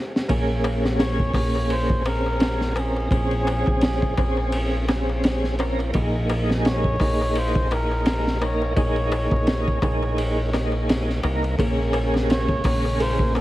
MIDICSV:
0, 0, Header, 1, 8, 480
1, 0, Start_track
1, 0, Key_signature, -5, "minor"
1, 0, Tempo, 705882
1, 201, Time_signature, 4, 2, 24, 8
1, 9118, End_track
2, 0, Start_track
2, 0, Title_t, "Muted trumpet"
2, 0, Program_c, 0, 59
2, 685, Note_on_c, 0, 73, 105
2, 1135, Note_off_c, 0, 73, 0
2, 1167, Note_on_c, 0, 72, 109
2, 1387, Note_off_c, 0, 72, 0
2, 1410, Note_on_c, 0, 70, 100
2, 1898, Note_on_c, 0, 68, 91
2, 1908, Note_off_c, 0, 70, 0
2, 3809, Note_off_c, 0, 68, 0
2, 4536, Note_on_c, 0, 73, 111
2, 5020, Note_on_c, 0, 72, 112
2, 5030, Note_off_c, 0, 73, 0
2, 5257, Note_on_c, 0, 70, 101
2, 5267, Note_off_c, 0, 72, 0
2, 5737, Note_on_c, 0, 73, 96
2, 5747, Note_off_c, 0, 70, 0
2, 7649, Note_off_c, 0, 73, 0
2, 8371, Note_on_c, 0, 73, 113
2, 8818, Note_off_c, 0, 73, 0
2, 8852, Note_on_c, 0, 72, 112
2, 9070, Note_off_c, 0, 72, 0
2, 9090, Note_on_c, 0, 70, 99
2, 9118, Note_off_c, 0, 70, 0
2, 9118, End_track
3, 0, Start_track
3, 0, Title_t, "Tonewheel organ"
3, 0, Program_c, 1, 16
3, 193, Note_on_c, 1, 58, 100
3, 201, Note_on_c, 1, 61, 87
3, 207, Note_on_c, 1, 68, 108
3, 892, Note_off_c, 1, 58, 0
3, 896, Note_off_c, 1, 61, 0
3, 899, Note_off_c, 1, 68, 0
3, 915, Note_on_c, 1, 58, 90
3, 918, Note_on_c, 1, 61, 83
3, 924, Note_on_c, 1, 68, 98
3, 1377, Note_off_c, 1, 58, 0
3, 1379, Note_off_c, 1, 61, 0
3, 1381, Note_off_c, 1, 68, 0
3, 1403, Note_on_c, 1, 60, 80
3, 1408, Note_on_c, 1, 61, 70
3, 1409, Note_on_c, 1, 68, 84
3, 1857, Note_off_c, 1, 60, 0
3, 1859, Note_off_c, 1, 61, 0
3, 1860, Note_off_c, 1, 68, 0
3, 1882, Note_on_c, 1, 60, 88
3, 1886, Note_on_c, 1, 61, 88
3, 1890, Note_on_c, 1, 70, 98
3, 2097, Note_off_c, 1, 60, 0
3, 2099, Note_off_c, 1, 61, 0
3, 2101, Note_off_c, 1, 70, 0
3, 2114, Note_on_c, 1, 60, 97
3, 2123, Note_on_c, 1, 61, 94
3, 2128, Note_on_c, 1, 68, 105
3, 2812, Note_off_c, 1, 60, 0
3, 2817, Note_off_c, 1, 61, 0
3, 2820, Note_off_c, 1, 68, 0
3, 2838, Note_on_c, 1, 60, 86
3, 2843, Note_on_c, 1, 61, 79
3, 2846, Note_on_c, 1, 68, 102
3, 3299, Note_off_c, 1, 60, 0
3, 3301, Note_off_c, 1, 61, 0
3, 3302, Note_off_c, 1, 68, 0
3, 3320, Note_on_c, 1, 60, 80
3, 3324, Note_on_c, 1, 61, 74
3, 3327, Note_on_c, 1, 68, 88
3, 3775, Note_off_c, 1, 60, 0
3, 3778, Note_off_c, 1, 61, 0
3, 3779, Note_off_c, 1, 68, 0
3, 3800, Note_on_c, 1, 60, 89
3, 3805, Note_on_c, 1, 61, 83
3, 3806, Note_on_c, 1, 70, 103
3, 4016, Note_off_c, 1, 60, 0
3, 4018, Note_off_c, 1, 61, 0
3, 4018, Note_off_c, 1, 70, 0
3, 4033, Note_on_c, 1, 58, 99
3, 4041, Note_on_c, 1, 63, 90
3, 4047, Note_on_c, 1, 68, 104
3, 4732, Note_off_c, 1, 58, 0
3, 4736, Note_off_c, 1, 63, 0
3, 4739, Note_off_c, 1, 68, 0
3, 4760, Note_on_c, 1, 58, 97
3, 4764, Note_on_c, 1, 63, 83
3, 4769, Note_on_c, 1, 68, 94
3, 5219, Note_off_c, 1, 58, 0
3, 5222, Note_off_c, 1, 63, 0
3, 5224, Note_off_c, 1, 68, 0
3, 5239, Note_on_c, 1, 58, 79
3, 5244, Note_on_c, 1, 63, 69
3, 5247, Note_on_c, 1, 68, 84
3, 5695, Note_off_c, 1, 58, 0
3, 5698, Note_off_c, 1, 63, 0
3, 5699, Note_off_c, 1, 68, 0
3, 5716, Note_on_c, 1, 58, 93
3, 5721, Note_on_c, 1, 63, 89
3, 5725, Note_on_c, 1, 70, 105
3, 5934, Note_off_c, 1, 58, 0
3, 5936, Note_off_c, 1, 63, 0
3, 5938, Note_off_c, 1, 70, 0
3, 5955, Note_on_c, 1, 58, 100
3, 5959, Note_on_c, 1, 63, 86
3, 5968, Note_on_c, 1, 68, 108
3, 6653, Note_off_c, 1, 58, 0
3, 6655, Note_off_c, 1, 63, 0
3, 6660, Note_off_c, 1, 68, 0
3, 6680, Note_on_c, 1, 58, 94
3, 6683, Note_on_c, 1, 63, 84
3, 6685, Note_on_c, 1, 68, 105
3, 7140, Note_off_c, 1, 58, 0
3, 7141, Note_off_c, 1, 63, 0
3, 7142, Note_off_c, 1, 68, 0
3, 7160, Note_on_c, 1, 58, 78
3, 7165, Note_on_c, 1, 63, 71
3, 7166, Note_on_c, 1, 68, 81
3, 7616, Note_off_c, 1, 58, 0
3, 7618, Note_off_c, 1, 63, 0
3, 7619, Note_off_c, 1, 68, 0
3, 7637, Note_on_c, 1, 58, 93
3, 7642, Note_on_c, 1, 63, 81
3, 7645, Note_on_c, 1, 70, 95
3, 7854, Note_off_c, 1, 58, 0
3, 7856, Note_off_c, 1, 63, 0
3, 7858, Note_off_c, 1, 70, 0
3, 7872, Note_on_c, 1, 58, 100
3, 7880, Note_on_c, 1, 61, 83
3, 7885, Note_on_c, 1, 68, 111
3, 8571, Note_off_c, 1, 58, 0
3, 8576, Note_off_c, 1, 61, 0
3, 8578, Note_off_c, 1, 68, 0
3, 8598, Note_on_c, 1, 58, 93
3, 8602, Note_on_c, 1, 61, 82
3, 8607, Note_on_c, 1, 68, 101
3, 9059, Note_off_c, 1, 58, 0
3, 9060, Note_off_c, 1, 61, 0
3, 9063, Note_off_c, 1, 68, 0
3, 9077, Note_on_c, 1, 60, 82
3, 9082, Note_on_c, 1, 61, 73
3, 9084, Note_on_c, 1, 68, 82
3, 9118, Note_off_c, 1, 60, 0
3, 9118, Note_off_c, 1, 61, 0
3, 9118, Note_off_c, 1, 68, 0
3, 9118, End_track
4, 0, Start_track
4, 0, Title_t, "Felt piano"
4, 0, Program_c, 2, 0
4, 7882, Note_on_c, 2, 58, 84
4, 7998, Control_c, 2, 64, 127
4, 8820, Note_off_c, 2, 58, 0
4, 8843, Note_on_c, 2, 58, 109
4, 9118, Note_off_c, 2, 58, 0
4, 9118, End_track
5, 0, Start_track
5, 0, Title_t, "String section"
5, 0, Program_c, 3, 48
5, 7871, Note_on_c, 3, 56, 65
5, 7872, Note_on_c, 3, 58, 79
5, 7873, Note_on_c, 3, 49, 80
5, 9118, Note_off_c, 3, 49, 0
5, 9118, Note_off_c, 3, 56, 0
5, 9118, Note_off_c, 3, 58, 0
5, 9118, End_track
6, 0, Start_track
6, 0, Title_t, "Fingered electric bass"
6, 0, Program_c, 4, 33
6, 201, Note_on_c, 4, 34, 100
6, 901, Note_off_c, 4, 34, 0
6, 910, Note_on_c, 4, 34, 75
6, 2095, Note_off_c, 4, 34, 0
6, 2117, Note_on_c, 4, 34, 94
6, 2469, Note_off_c, 4, 34, 0
6, 2499, Note_on_c, 4, 34, 81
6, 2822, Note_off_c, 4, 34, 0
6, 2845, Note_on_c, 4, 34, 82
6, 4023, Note_off_c, 4, 34, 0
6, 4045, Note_on_c, 4, 34, 101
6, 4743, Note_off_c, 4, 34, 0
6, 4764, Note_on_c, 4, 34, 82
6, 5943, Note_off_c, 4, 34, 0
6, 5963, Note_on_c, 4, 34, 96
6, 6312, Note_off_c, 4, 34, 0
6, 6335, Note_on_c, 4, 34, 83
6, 6660, Note_off_c, 4, 34, 0
6, 6681, Note_on_c, 4, 34, 87
6, 7638, Note_off_c, 4, 34, 0
6, 7642, Note_on_c, 4, 36, 90
6, 7857, Note_off_c, 4, 36, 0
6, 7881, Note_on_c, 4, 34, 95
6, 8581, Note_off_c, 4, 34, 0
6, 8600, Note_on_c, 4, 34, 81
6, 9118, Note_off_c, 4, 34, 0
6, 9118, End_track
7, 0, Start_track
7, 0, Title_t, "Darbuka"
7, 198, Note_on_c, 9, 63, 36
7, 266, Note_off_c, 9, 63, 0
7, 437, Note_on_c, 9, 63, 100
7, 505, Note_off_c, 9, 63, 0
7, 583, Note_on_c, 9, 63, 49
7, 651, Note_off_c, 9, 63, 0
7, 679, Note_on_c, 9, 63, 39
7, 747, Note_off_c, 9, 63, 0
7, 914, Note_on_c, 9, 63, 99
7, 982, Note_off_c, 9, 63, 0
7, 1054, Note_on_c, 9, 63, 55
7, 1122, Note_off_c, 9, 63, 0
7, 1157, Note_on_c, 9, 63, 41
7, 1225, Note_off_c, 9, 63, 0
7, 1399, Note_on_c, 9, 63, 88
7, 1467, Note_off_c, 9, 63, 0
7, 1539, Note_on_c, 9, 63, 54
7, 1607, Note_off_c, 9, 63, 0
7, 1644, Note_on_c, 9, 63, 39
7, 1712, Note_off_c, 9, 63, 0
7, 1875, Note_on_c, 9, 63, 90
7, 1943, Note_off_c, 9, 63, 0
7, 2016, Note_on_c, 9, 63, 50
7, 2084, Note_off_c, 9, 63, 0
7, 2118, Note_on_c, 9, 63, 41
7, 2186, Note_off_c, 9, 63, 0
7, 2360, Note_on_c, 9, 63, 86
7, 2428, Note_off_c, 9, 63, 0
7, 2489, Note_on_c, 9, 63, 56
7, 2557, Note_off_c, 9, 63, 0
7, 2601, Note_on_c, 9, 63, 38
7, 2669, Note_off_c, 9, 63, 0
7, 2839, Note_on_c, 9, 63, 92
7, 2907, Note_off_c, 9, 63, 0
7, 2972, Note_on_c, 9, 63, 57
7, 3040, Note_off_c, 9, 63, 0
7, 3079, Note_on_c, 9, 63, 37
7, 3147, Note_off_c, 9, 63, 0
7, 3322, Note_on_c, 9, 63, 98
7, 3390, Note_off_c, 9, 63, 0
7, 3464, Note_on_c, 9, 63, 58
7, 3532, Note_off_c, 9, 63, 0
7, 3565, Note_on_c, 9, 63, 41
7, 3633, Note_off_c, 9, 63, 0
7, 3807, Note_on_c, 9, 63, 93
7, 3875, Note_off_c, 9, 63, 0
7, 3938, Note_on_c, 9, 63, 49
7, 4006, Note_off_c, 9, 63, 0
7, 4046, Note_on_c, 9, 63, 44
7, 4114, Note_off_c, 9, 63, 0
7, 4282, Note_on_c, 9, 63, 91
7, 4350, Note_off_c, 9, 63, 0
7, 4418, Note_on_c, 9, 63, 52
7, 4486, Note_off_c, 9, 63, 0
7, 4523, Note_on_c, 9, 63, 41
7, 4591, Note_off_c, 9, 63, 0
7, 4757, Note_on_c, 9, 63, 94
7, 4825, Note_off_c, 9, 63, 0
7, 4905, Note_on_c, 9, 63, 54
7, 4973, Note_off_c, 9, 63, 0
7, 5013, Note_on_c, 9, 63, 39
7, 5081, Note_off_c, 9, 63, 0
7, 5248, Note_on_c, 9, 63, 88
7, 5316, Note_off_c, 9, 63, 0
7, 5383, Note_on_c, 9, 63, 52
7, 5451, Note_off_c, 9, 63, 0
7, 5481, Note_on_c, 9, 63, 41
7, 5549, Note_off_c, 9, 63, 0
7, 5723, Note_on_c, 9, 63, 90
7, 5791, Note_off_c, 9, 63, 0
7, 5860, Note_on_c, 9, 63, 52
7, 5928, Note_off_c, 9, 63, 0
7, 5967, Note_on_c, 9, 63, 45
7, 6035, Note_off_c, 9, 63, 0
7, 6202, Note_on_c, 9, 63, 100
7, 6270, Note_off_c, 9, 63, 0
7, 6334, Note_on_c, 9, 63, 55
7, 6402, Note_off_c, 9, 63, 0
7, 6438, Note_on_c, 9, 63, 39
7, 6506, Note_off_c, 9, 63, 0
7, 6678, Note_on_c, 9, 63, 96
7, 6746, Note_off_c, 9, 63, 0
7, 6817, Note_on_c, 9, 63, 56
7, 6885, Note_off_c, 9, 63, 0
7, 6914, Note_on_c, 9, 63, 42
7, 6982, Note_off_c, 9, 63, 0
7, 7163, Note_on_c, 9, 63, 88
7, 7231, Note_off_c, 9, 63, 0
7, 7289, Note_on_c, 9, 63, 56
7, 7357, Note_off_c, 9, 63, 0
7, 7400, Note_on_c, 9, 63, 38
7, 7468, Note_off_c, 9, 63, 0
7, 7640, Note_on_c, 9, 63, 103
7, 7708, Note_off_c, 9, 63, 0
7, 7772, Note_on_c, 9, 63, 54
7, 7840, Note_off_c, 9, 63, 0
7, 7878, Note_on_c, 9, 63, 42
7, 7946, Note_off_c, 9, 63, 0
7, 8113, Note_on_c, 9, 63, 89
7, 8181, Note_off_c, 9, 63, 0
7, 8254, Note_on_c, 9, 63, 58
7, 8322, Note_off_c, 9, 63, 0
7, 8358, Note_on_c, 9, 63, 36
7, 8426, Note_off_c, 9, 63, 0
7, 8601, Note_on_c, 9, 63, 93
7, 8669, Note_off_c, 9, 63, 0
7, 8736, Note_on_c, 9, 63, 57
7, 8804, Note_off_c, 9, 63, 0
7, 8837, Note_on_c, 9, 63, 41
7, 8905, Note_off_c, 9, 63, 0
7, 9079, Note_on_c, 9, 63, 82
7, 9118, Note_off_c, 9, 63, 0
7, 9118, End_track
8, 0, Start_track
8, 0, Title_t, "Drums"
8, 109, Note_on_c, 9, 38, 70
8, 177, Note_off_c, 9, 38, 0
8, 198, Note_on_c, 9, 51, 93
8, 199, Note_on_c, 9, 36, 109
8, 266, Note_off_c, 9, 51, 0
8, 267, Note_off_c, 9, 36, 0
8, 439, Note_on_c, 9, 51, 71
8, 507, Note_off_c, 9, 51, 0
8, 579, Note_on_c, 9, 38, 54
8, 647, Note_off_c, 9, 38, 0
8, 676, Note_on_c, 9, 38, 126
8, 679, Note_on_c, 9, 51, 92
8, 744, Note_off_c, 9, 38, 0
8, 747, Note_off_c, 9, 51, 0
8, 812, Note_on_c, 9, 36, 83
8, 880, Note_off_c, 9, 36, 0
8, 908, Note_on_c, 9, 36, 96
8, 917, Note_on_c, 9, 46, 77
8, 976, Note_off_c, 9, 36, 0
8, 985, Note_off_c, 9, 46, 0
8, 1156, Note_on_c, 9, 51, 81
8, 1224, Note_off_c, 9, 51, 0
8, 1290, Note_on_c, 9, 36, 103
8, 1358, Note_off_c, 9, 36, 0
8, 1396, Note_on_c, 9, 51, 66
8, 1464, Note_off_c, 9, 51, 0
8, 1633, Note_on_c, 9, 51, 83
8, 1642, Note_on_c, 9, 38, 99
8, 1701, Note_off_c, 9, 51, 0
8, 1710, Note_off_c, 9, 38, 0
8, 1777, Note_on_c, 9, 38, 54
8, 1845, Note_off_c, 9, 38, 0
8, 1881, Note_on_c, 9, 51, 62
8, 1949, Note_off_c, 9, 51, 0
8, 2113, Note_on_c, 9, 36, 111
8, 2119, Note_on_c, 9, 51, 79
8, 2181, Note_off_c, 9, 36, 0
8, 2187, Note_off_c, 9, 51, 0
8, 2251, Note_on_c, 9, 51, 42
8, 2319, Note_off_c, 9, 51, 0
8, 2363, Note_on_c, 9, 51, 67
8, 2431, Note_off_c, 9, 51, 0
8, 2497, Note_on_c, 9, 36, 97
8, 2565, Note_off_c, 9, 36, 0
8, 2593, Note_on_c, 9, 51, 94
8, 2602, Note_on_c, 9, 38, 116
8, 2661, Note_off_c, 9, 51, 0
8, 2670, Note_off_c, 9, 38, 0
8, 2736, Note_on_c, 9, 36, 86
8, 2804, Note_off_c, 9, 36, 0
8, 2839, Note_on_c, 9, 51, 65
8, 2840, Note_on_c, 9, 36, 90
8, 2907, Note_off_c, 9, 51, 0
8, 2908, Note_off_c, 9, 36, 0
8, 3076, Note_on_c, 9, 51, 93
8, 3144, Note_off_c, 9, 51, 0
8, 3322, Note_on_c, 9, 51, 66
8, 3325, Note_on_c, 9, 38, 55
8, 3390, Note_off_c, 9, 51, 0
8, 3393, Note_off_c, 9, 38, 0
8, 3560, Note_on_c, 9, 51, 88
8, 3569, Note_on_c, 9, 38, 126
8, 3628, Note_off_c, 9, 51, 0
8, 3637, Note_off_c, 9, 38, 0
8, 3698, Note_on_c, 9, 38, 45
8, 3766, Note_off_c, 9, 38, 0
8, 3798, Note_on_c, 9, 51, 56
8, 3866, Note_off_c, 9, 51, 0
8, 3944, Note_on_c, 9, 51, 38
8, 4012, Note_off_c, 9, 51, 0
8, 4037, Note_on_c, 9, 51, 84
8, 4044, Note_on_c, 9, 36, 110
8, 4105, Note_off_c, 9, 51, 0
8, 4112, Note_off_c, 9, 36, 0
8, 4280, Note_on_c, 9, 51, 73
8, 4348, Note_off_c, 9, 51, 0
8, 4425, Note_on_c, 9, 38, 50
8, 4493, Note_off_c, 9, 38, 0
8, 4521, Note_on_c, 9, 51, 78
8, 4529, Note_on_c, 9, 38, 116
8, 4589, Note_off_c, 9, 51, 0
8, 4597, Note_off_c, 9, 38, 0
8, 4653, Note_on_c, 9, 36, 94
8, 4721, Note_off_c, 9, 36, 0
8, 4761, Note_on_c, 9, 36, 93
8, 4767, Note_on_c, 9, 46, 80
8, 4829, Note_off_c, 9, 36, 0
8, 4835, Note_off_c, 9, 46, 0
8, 5000, Note_on_c, 9, 51, 84
8, 5068, Note_off_c, 9, 51, 0
8, 5137, Note_on_c, 9, 36, 102
8, 5205, Note_off_c, 9, 36, 0
8, 5242, Note_on_c, 9, 51, 64
8, 5310, Note_off_c, 9, 51, 0
8, 5479, Note_on_c, 9, 51, 93
8, 5485, Note_on_c, 9, 38, 108
8, 5547, Note_off_c, 9, 51, 0
8, 5553, Note_off_c, 9, 38, 0
8, 5626, Note_on_c, 9, 38, 53
8, 5694, Note_off_c, 9, 38, 0
8, 5723, Note_on_c, 9, 51, 54
8, 5791, Note_off_c, 9, 51, 0
8, 5960, Note_on_c, 9, 36, 106
8, 5960, Note_on_c, 9, 51, 90
8, 6028, Note_off_c, 9, 36, 0
8, 6028, Note_off_c, 9, 51, 0
8, 6092, Note_on_c, 9, 51, 43
8, 6160, Note_off_c, 9, 51, 0
8, 6198, Note_on_c, 9, 51, 73
8, 6266, Note_off_c, 9, 51, 0
8, 6333, Note_on_c, 9, 36, 92
8, 6401, Note_off_c, 9, 36, 0
8, 6439, Note_on_c, 9, 51, 78
8, 6444, Note_on_c, 9, 38, 122
8, 6507, Note_off_c, 9, 51, 0
8, 6512, Note_off_c, 9, 38, 0
8, 6581, Note_on_c, 9, 36, 95
8, 6649, Note_off_c, 9, 36, 0
8, 6679, Note_on_c, 9, 36, 105
8, 6684, Note_on_c, 9, 51, 64
8, 6747, Note_off_c, 9, 36, 0
8, 6752, Note_off_c, 9, 51, 0
8, 6923, Note_on_c, 9, 51, 90
8, 6991, Note_off_c, 9, 51, 0
8, 7167, Note_on_c, 9, 38, 46
8, 7168, Note_on_c, 9, 51, 67
8, 7235, Note_off_c, 9, 38, 0
8, 7236, Note_off_c, 9, 51, 0
8, 7407, Note_on_c, 9, 51, 94
8, 7412, Note_on_c, 9, 38, 107
8, 7475, Note_off_c, 9, 51, 0
8, 7480, Note_off_c, 9, 38, 0
8, 7547, Note_on_c, 9, 38, 42
8, 7615, Note_off_c, 9, 38, 0
8, 7639, Note_on_c, 9, 51, 63
8, 7707, Note_off_c, 9, 51, 0
8, 7780, Note_on_c, 9, 51, 42
8, 7848, Note_off_c, 9, 51, 0
8, 7879, Note_on_c, 9, 36, 103
8, 7884, Note_on_c, 9, 51, 93
8, 7947, Note_off_c, 9, 36, 0
8, 7952, Note_off_c, 9, 51, 0
8, 8118, Note_on_c, 9, 51, 66
8, 8186, Note_off_c, 9, 51, 0
8, 8268, Note_on_c, 9, 38, 48
8, 8336, Note_off_c, 9, 38, 0
8, 8363, Note_on_c, 9, 51, 81
8, 8373, Note_on_c, 9, 38, 116
8, 8431, Note_off_c, 9, 51, 0
8, 8441, Note_off_c, 9, 38, 0
8, 8490, Note_on_c, 9, 36, 100
8, 8558, Note_off_c, 9, 36, 0
8, 8594, Note_on_c, 9, 46, 86
8, 8598, Note_on_c, 9, 36, 108
8, 8662, Note_off_c, 9, 46, 0
8, 8666, Note_off_c, 9, 36, 0
8, 8841, Note_on_c, 9, 51, 78
8, 8909, Note_off_c, 9, 51, 0
8, 8971, Note_on_c, 9, 36, 94
8, 9039, Note_off_c, 9, 36, 0
8, 9086, Note_on_c, 9, 51, 59
8, 9118, Note_off_c, 9, 51, 0
8, 9118, End_track
0, 0, End_of_file